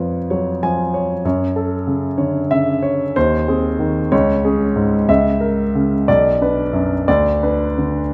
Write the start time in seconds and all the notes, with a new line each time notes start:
Already playing: F2 F3 B4 C#5
0.30 F#3 C#5
0.63 F3 G#5
0.94 C#5
1.25 F#2 C#5
1.56 A4
1.87 C#3
2.18 D3 C#5
2.50 C#3 E5
2.83 C#5
3.16 D#2 C5
3.48 C4 G#4
3.79 D#3
4.12 C#2 C#5
4.45 C#4 G#4
4.76 G#2
5.09 C#2 E5
5.41 A#4
5.75 C#3
6.08 B1 D5
6.41 D4 B4
6.73 F#2
7.08 D2 D5
7.43 D4 B4
7.78 D3